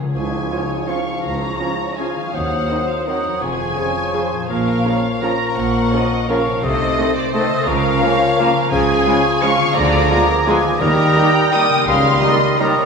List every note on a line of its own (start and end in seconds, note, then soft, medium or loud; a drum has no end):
0.00 2.26 C#3 medium
0.00 0.07 C#3 medium
0.00 2.28 F3 soft
0.00 2.35 F4 soft
0.00 0.14 G#4 soft
0.00 2.35 C#5 soft
0.05 2.31 C#4 soft
0.10 2.33 G#4 medium
0.15 0.45 C#2 medium
0.15 0.46 C#2 medium
0.15 0.85 F3 medium
0.15 0.86 G#4 medium
0.15 0.85 G#5 medium
0.15 0.85 C#6 medium
0.15 tam-tam medium
0.51 0.65 C#3 medium
0.51 0.65 F3 medium
0.51 0.60 C#4 medium
0.51 0.66 C#4 medium
0.51 0.59 F4 medium
0.51 0.65 F4 medium
0.51 0.87 C#5 medium
0.88 1.01 C#3 medium
0.88 1.01 F3 medium
0.88 1.96 F3 medium
0.88 0.97 C#4 medium
0.88 1.02 C#4 medium
0.88 0.97 F4 medium
0.88 1.02 F4 soft
0.88 1.97 G#4 medium
0.88 1.61 F5 medium
0.88 1.24 C#6 medium
0.88 1.97 C#6 medium
1.24 1.54 C#2 medium
1.24 1.97 A#5 loud
1.60 1.74 C#3 medium
1.60 1.74 F3 soft
1.60 1.74 C#4 medium
1.60 1.68 C#4 medium
1.60 1.68 F4 medium
1.60 1.74 F4 medium
1.60 1.98 C#5 medium
1.98 2.11 C#3 medium
1.98 2.11 F3 medium
1.98 2.36 F3 medium
1.98 2.06 C#4 medium
1.98 2.11 C#4 medium
1.98 2.06 F4 medium
1.98 2.12 F4 medium
1.98 2.33 G#4 medium
1.98 2.69 F5 medium
1.98 2.34 G#5 medium
1.98 2.33 C#6 medium
2.16 3.34 D#3 medium
2.20 3.36 F#3 soft
2.25 3.38 C4 medium
2.29 3.41 C5 medium
2.34 2.63 D#2 medium
2.34 2.84 D#3 medium
2.34 3.06 F#3 medium
2.34 3.05 C5 medium
2.34 2.88 F#5 loud
2.34 3.05 D#6 medium
2.68 2.82 D#3 medium
2.68 2.82 F#3 medium
2.68 2.83 C4 medium
2.68 2.77 C4 medium
2.68 2.83 D#4 medium
2.68 2.78 D#4 medium
2.68 3.07 C5 medium
2.88 3.07 F5 medium
3.06 3.19 D#3 medium
3.06 3.19 F#3 medium
3.06 3.43 F#3 medium
3.06 3.15 C4 medium
3.06 3.19 C4 medium
3.06 3.14 D#4 medium
3.06 3.19 D#4 medium
3.06 3.42 A#4 medium
3.06 3.44 C5 medium
3.06 3.41 F#5 medium
3.06 3.43 D#6 medium
3.24 4.42 F2 medium
3.28 4.35 F3 medium
3.33 4.40 C#4 medium
3.38 3.70 F2 medium
3.38 4.49 G#4 medium
3.38 4.49 G#5 loud
3.42 3.71 F1 medium
3.42 4.49 F3 medium
3.42 3.76 G#4 medium
3.42 4.49 G#4 medium
3.42 4.49 C#6 medium
3.76 3.89 C#3 medium
3.76 3.89 F3 medium
3.76 3.84 C#4 medium
3.76 3.90 C#4 medium
3.76 3.85 G#4 medium
3.76 3.90 G#4 medium
3.76 4.14 C#5 medium
4.13 4.26 C#3 medium
4.13 4.26 F3 medium
4.13 4.22 C#4 medium
4.13 4.27 C#4 medium
4.13 4.21 G#4 medium
4.13 4.27 G#4 medium
4.13 4.50 C5 medium
4.32 6.56 A#2 medium
4.36 6.58 F3 medium
4.41 6.60 C#4 medium
4.46 4.79 A#2 medium
4.46 6.63 A#4 medium
4.46 4.84 A#4 medium
4.50 4.79 A#1 medium
4.50 5.21 F3 medium
4.50 5.21 A#4 medium
4.50 5.21 F5 loud
4.50 5.21 C#6 medium
4.85 4.98 C#3 medium
4.85 4.99 F3 medium
4.85 4.93 C#4 medium
4.85 4.99 C#4 medium
4.85 4.93 A#4 medium
4.85 4.99 A#4 medium
4.85 5.22 C#5 medium
5.21 5.34 C#3 medium
5.21 6.26 F3 medium
5.21 5.34 F3 medium
5.21 5.30 C#4 medium
5.21 5.36 C#4 medium
5.21 6.27 A#4 medium
5.21 5.91 A#4 medium
5.21 5.30 A#4 medium
5.21 5.36 A#4 medium
5.21 5.57 A#5 loud
5.21 6.26 C#6 medium
5.57 5.86 A#1 medium
5.57 5.86 A#2 medium
5.57 6.29 F#5 loud
5.92 6.06 C#3 medium
5.92 6.05 F3 medium
5.92 6.01 C#4 medium
5.92 6.06 C#4 medium
5.92 6.00 A#4 medium
5.92 6.06 A#4 medium
5.92 6.29 D#5 medium
6.29 6.41 C#3 medium
6.29 6.41 F3 medium
6.29 6.65 F3 medium
6.29 6.37 C#4 medium
6.29 6.42 C#4 medium
6.29 6.65 A#4 medium
6.29 6.37 A#4 medium
6.29 6.42 A#4 medium
6.29 6.63 C#5 medium
6.29 6.64 F5 loud
6.29 6.62 C#6 medium
6.45 7.60 C3 medium
6.50 7.62 A3 medium
6.54 7.64 D#4 medium
6.59 7.66 A4 medium
6.59 7.15 D#5 loud
6.63 6.92 C2 loud
6.63 6.92 C3 medium
6.63 7.09 A3 medium
6.63 7.09 A4 medium
6.63 6.97 C5 loud
6.63 7.08 D#6 medium
6.97 7.10 D#3 medium
6.97 7.10 A3 medium
6.97 7.06 A3 medium
6.97 7.12 C4 medium
6.97 7.06 A4 medium
6.97 7.12 A4 medium
6.97 7.66 C5 loud
7.15 7.33 D5 loud
7.32 7.45 D#3 medium
7.32 7.45 A3 medium
7.32 7.68 A3 medium
7.32 7.42 A3 medium
7.32 7.46 C4 medium
7.32 7.46 A4 medium
7.32 7.42 A4 medium
7.32 7.69 A4 medium
7.32 7.67 D#5 loud
7.32 7.69 D#6 medium
7.49 8.53 C#3 medium
7.53 8.57 C#4 medium
7.58 8.68 A#4 medium
7.67 7.96 C#2 loud
7.67 7.96 C#3 loud
7.67 8.71 F3 loud
7.67 8.02 A#4 loud
7.67 8.71 A#4 medium
7.67 8.72 F5 loud
7.67 8.70 C#6 medium
8.01 8.15 C#3 medium
8.01 8.14 A#3 medium
8.01 8.10 A#3 medium
8.01 8.15 C#4 medium
8.01 8.15 F4 medium
8.01 8.11 F4 medium
8.01 8.38 C#5 loud
8.37 8.50 C#3 medium
8.37 8.50 A#3 medium
8.37 8.46 A#3 medium
8.37 8.51 C#4 medium
8.37 8.46 F4 medium
8.37 8.51 F4 medium
8.37 8.71 A#4 medium
8.54 9.68 C#3 medium
8.58 9.70 C#4 medium
8.63 9.65 F4 medium
8.67 9.70 G#4 medium
8.67 9.41 G#4 loud
8.67 9.40 G#5 loud
8.67 9.40 C#6 medium
8.72 9.00 C#2 loud
8.72 9.00 C#3 loud
8.72 9.41 F3 loud
8.72 9.41 G#4 loud
9.05 9.19 C#3 medium
9.05 9.19 G#3 medium
9.05 9.15 G#3 medium
9.05 9.20 C#4 medium
9.05 9.14 F4 medium
9.05 9.20 F4 medium
9.41 9.54 C#3 medium
9.41 9.74 F3 medium
9.41 9.54 G#3 medium
9.41 9.50 G#3 medium
9.41 9.55 C#4 medium
9.41 9.50 F4 medium
9.41 9.55 F4 medium
9.41 9.75 G#4 loud
9.41 9.75 F5 loud
9.41 9.76 C#6 loud
9.41 9.75 C#6 loud
9.58 10.73 D3 medium
9.62 10.76 B3 medium
9.66 10.78 F4 medium
9.71 10.45 F3 loud
9.71 10.80 G#4 medium
9.71 10.46 A#5 loud
9.71 10.46 D6 medium
9.75 10.04 D2 loud
9.75 10.04 D3 loud
9.75 10.45 G#4 loud
9.75 10.10 D5 loud
10.10 10.23 D3 medium
10.10 10.18 G#3 medium
10.10 10.23 G#3 medium
10.10 10.24 B3 medium
10.10 10.18 F4 medium
10.10 10.24 F4 medium
10.10 10.46 A#4 loud
10.46 10.59 D3 medium
10.46 10.82 F3 medium
10.46 10.59 G#3 medium
10.46 10.55 G#3 medium
10.46 10.59 B3 medium
10.46 10.55 F4 medium
10.46 10.59 F4 medium
10.46 10.80 G#4 medium
10.46 10.81 B4 medium
10.46 10.81 G#5 loud
10.46 10.82 D6 loud
10.63 11.80 D#3 medium
10.67 11.73 A#3 medium
10.72 11.77 D#4 medium
10.76 11.52 G3 loud
10.76 11.82 G4 medium
10.80 11.10 D#2 loud
10.80 11.10 D#3 loud
10.80 11.31 D#3 loud
10.80 11.16 G4 loud
10.80 11.51 A#4 loud
10.80 11.51 A#5 loud
10.80 11.53 D#6 medium
11.16 11.29 D#3 medium
11.16 11.29 G3 medium
11.16 11.24 G3 medium
11.16 11.30 A#3 medium
11.16 11.24 D#4 medium
11.16 11.30 D#4 medium
11.16 11.87 G5 loud
11.52 11.65 D#3 medium
11.52 11.86 G3 medium
11.52 11.66 G3 medium
11.52 11.61 G3 medium
11.52 11.66 A#3 medium
11.52 11.65 D#4 medium
11.52 11.62 D#4 medium
11.52 11.86 A#4 medium
11.52 11.87 D#6 medium
11.52 11.88 D#6 loud
11.69 12.85 C#3 medium
11.74 12.85 A#3 medium
11.78 12.83 D#4 medium
11.83 12.16 C#3 loud
11.83 12.85 G4 medium
11.83 12.58 A#4 medium
11.83 12.21 F5 loud
11.87 12.16 C#2 loud
11.87 12.58 G3 loud
11.87 12.58 C6 loud
11.87 12.58 D#6 medium
12.22 12.36 D#3 medium
12.22 12.30 G3 medium
12.22 12.36 G3 medium
12.22 12.36 A#3 medium
12.22 12.30 D#4 medium
12.22 12.37 D#4 medium
12.22 12.59 D#5 loud
12.59 12.72 D#3 medium
12.59 12.85 G3 medium
12.59 12.72 G3 medium
12.59 12.67 G3 medium
12.59 12.72 A#3 medium
12.59 12.67 D#4 medium
12.59 12.73 D#4 medium
12.59 12.85 A#4 medium
12.59 12.85 C#5 loud
12.59 12.85 A#5 loud
12.59 12.85 D#6 medium
12.75 12.85 C3 medium
12.80 12.85 C4 medium